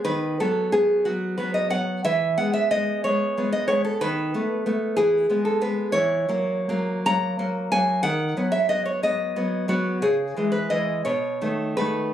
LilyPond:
\new Staff \with { instrumentName = "Nylon-string guitar" } { \time 6/8 \key b \mixolydian \tempo 4. = 60 << { b'8 a'8 gis'8 fis'8 b'16 dis''16 fis''8 | e''8 fis''16 e''16 dis''8 cis''8. dis''16 cis''16 a'16 | b'4. gis'8. a'16 b'8 | cis''4. ais''4 gis''8 |
fis''8. e''16 dis''16 cis''16 dis''4 fis'8 | gis'8. b'16 dis''8 cis''4 b'8 | } \\ { dis8 <fis b>8 <fis b>8 <fis b>8 <fis b>8 <fis b>8 | e8 <gis b>8 <gis b>8 <gis b>8 <gis b>8 <gis b>8 | dis8 <a b>8 <a b>8 e8 <gis b>8 <gis b>8 | e8 <fis ais>8 <fis ais>8 <fis ais>8 <fis ais>8 <fis ais>8 |
dis8 <fis b>8 <fis b>8 <fis b>8 <fis b>8 <fis b>8 | cis8 <e gis>8 <e gis>8 b,8 <dis a>8 <dis a>8 | } >> }